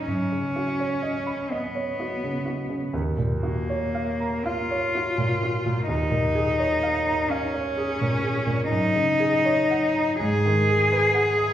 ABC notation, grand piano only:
X:1
M:6/8
L:1/16
Q:3/8=42
K:D#m
V:1 name="Grand piano"
F,, C, F c d b d c F C, F C, | D,, A,, F c e a e c F A,, F A,, | D,, A,, G c e a e c G A,, G A,, | F,, C, G c f a G,, D, G B f d' |]